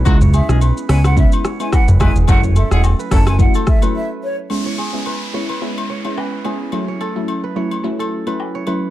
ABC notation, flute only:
X:1
M:4/4
L:1/16
Q:"Swing 16ths" 1/4=108
K:C#m
V:1 name="Flute"
z2 e z3 g f e z2 g f z g z | f z e f z2 a g f z e z e z c z | z16 | z16 |]